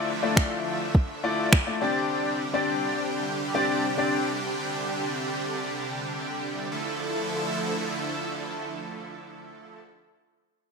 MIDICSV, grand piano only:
0, 0, Header, 1, 2, 480
1, 0, Start_track
1, 0, Key_signature, -1, "minor"
1, 0, Tempo, 576923
1, 1747, Time_signature, 4, 2, 24, 8
1, 8916, End_track
2, 0, Start_track
2, 0, Title_t, "Grand piano"
2, 0, Program_c, 0, 0
2, 185, Note_on_c, 0, 57, 86
2, 185, Note_on_c, 0, 64, 79
2, 188, Note_on_c, 0, 65, 82
2, 190, Note_on_c, 0, 74, 92
2, 756, Note_off_c, 0, 57, 0
2, 756, Note_off_c, 0, 64, 0
2, 757, Note_off_c, 0, 65, 0
2, 758, Note_off_c, 0, 74, 0
2, 1026, Note_on_c, 0, 57, 90
2, 1027, Note_on_c, 0, 64, 80
2, 1029, Note_on_c, 0, 65, 80
2, 1030, Note_on_c, 0, 74, 103
2, 1271, Note_off_c, 0, 57, 0
2, 1271, Note_off_c, 0, 64, 0
2, 1272, Note_off_c, 0, 65, 0
2, 1273, Note_off_c, 0, 74, 0
2, 1386, Note_on_c, 0, 57, 82
2, 1387, Note_on_c, 0, 64, 77
2, 1388, Note_on_c, 0, 65, 73
2, 1389, Note_on_c, 0, 74, 89
2, 1497, Note_off_c, 0, 74, 0
2, 1505, Note_on_c, 0, 60, 89
2, 1507, Note_off_c, 0, 57, 0
2, 1507, Note_off_c, 0, 64, 0
2, 1507, Note_on_c, 0, 62, 83
2, 1507, Note_on_c, 0, 67, 81
2, 1508, Note_off_c, 0, 65, 0
2, 1509, Note_on_c, 0, 74, 97
2, 1986, Note_off_c, 0, 60, 0
2, 1987, Note_off_c, 0, 62, 0
2, 1987, Note_off_c, 0, 67, 0
2, 1988, Note_off_c, 0, 74, 0
2, 2108, Note_on_c, 0, 60, 80
2, 2108, Note_on_c, 0, 62, 77
2, 2109, Note_on_c, 0, 67, 75
2, 2111, Note_on_c, 0, 74, 95
2, 2677, Note_off_c, 0, 60, 0
2, 2677, Note_off_c, 0, 62, 0
2, 2678, Note_off_c, 0, 67, 0
2, 2679, Note_off_c, 0, 74, 0
2, 2948, Note_on_c, 0, 60, 86
2, 2948, Note_on_c, 0, 62, 78
2, 2950, Note_on_c, 0, 67, 84
2, 2952, Note_on_c, 0, 74, 100
2, 3191, Note_off_c, 0, 60, 0
2, 3192, Note_off_c, 0, 62, 0
2, 3193, Note_off_c, 0, 67, 0
2, 3193, Note_off_c, 0, 74, 0
2, 3307, Note_on_c, 0, 60, 81
2, 3308, Note_on_c, 0, 62, 74
2, 3310, Note_on_c, 0, 67, 74
2, 3311, Note_on_c, 0, 74, 88
2, 3551, Note_off_c, 0, 60, 0
2, 3552, Note_off_c, 0, 62, 0
2, 3553, Note_off_c, 0, 67, 0
2, 3553, Note_off_c, 0, 74, 0
2, 8916, End_track
0, 0, End_of_file